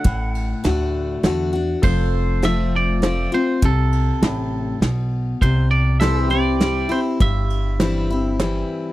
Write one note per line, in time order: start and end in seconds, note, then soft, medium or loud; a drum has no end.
0.00 1.81 A4 medium
0.00 1.81 D5 medium
0.00 1.20 F#5 medium
0.04 0.52 A1 medium
0.04 1.18 A2 medium
0.04 kick loud
0.04 ride medium
0.35 ride medium
0.64 1.15 D2 medium
0.64 1.21 D3 medium
0.64 1.21 A3 medium
0.64 1.22 D4 medium
0.64 1.22 F#4 medium
0.64 snare medium
0.64 ride medium
1.23 1.74 E2 medium
1.23 1.52 D3 medium
1.23 1.53 A3 medium
1.23 1.53 D4 medium
1.23 1.52 F#4 medium
1.23 snare medium
1.23 ride medium
1.53 1.83 D4 soft
1.53 1.82 F#4 medium
1.82 3.25 F1 medium
1.82 2.97 F2 medium
1.82 5.37 A4 medium
1.82 5.37 C5 medium
1.82 2.45 C5 loud
1.82 kick loud
1.82 crash medium
2.42 3.00 F3 medium
2.42 3.00 A3 medium
2.42 3.00 C4 medium
2.42 3.01 F4 medium
2.42 2.75 E5 medium
2.42 snare medium
2.42 ride medium
2.76 3.34 D5 medium
3.02 3.31 F3 medium
3.02 3.32 A3 medium
3.02 3.32 C4 medium
3.02 3.31 F4 medium
3.02 snare medium
3.02 ride medium
3.32 3.62 C4 soft
3.32 3.61 F4 medium
3.32 3.64 C5 medium
3.62 4.10 C2 medium
3.62 4.76 C3 medium
3.62 4.79 A4 medium
3.62 kick loud
3.62 ride medium
3.92 ride medium
4.22 4.73 A1 medium
4.22 4.79 A2 medium
4.22 snare medium
4.22 ride medium
4.81 5.32 B1 medium
4.81 5.39 B2 medium
4.81 snare medium
4.81 ride medium
5.41 6.83 C2 medium
5.41 6.55 C3 medium
5.41 5.70 C5 medium
5.41 kick medium
5.41 ride medium
5.71 5.99 D5 loud
6.00 6.29 E3 medium
6.00 6.30 G3 medium
6.00 6.30 C4 medium
6.00 6.29 E4 medium
6.00 6.26 A4 medium
6.00 8.93 C5 medium
6.00 6.28 E5 loud
6.00 snare medium
6.00 ride medium
6.26 8.93 G4 medium
6.30 6.60 C4 soft
6.30 6.59 E4 medium
6.30 6.92 D5 medium
6.60 6.89 E3 medium
6.60 6.89 G3 medium
6.60 6.90 C4 medium
6.60 6.88 E4 medium
6.60 snare medium
6.60 ride medium
6.89 7.20 C4 soft
6.89 7.18 E4 medium
6.89 7.00 C5 medium
7.20 8.62 G1 medium
7.20 8.33 G2 medium
7.20 8.36 E5 medium
7.20 kick loud
7.20 ride medium
7.50 ride medium
7.80 8.08 E3 medium
7.80 8.09 G3 medium
7.80 8.09 C4 medium
7.80 8.09 E4 medium
7.80 snare medium
7.80 ride medium
8.10 8.40 C4 soft
8.10 8.39 E4 medium
8.39 8.93 E3 medium
8.39 8.93 G3 medium
8.39 8.93 C4 medium
8.39 8.93 E4 medium
8.39 snare medium
8.39 ride medium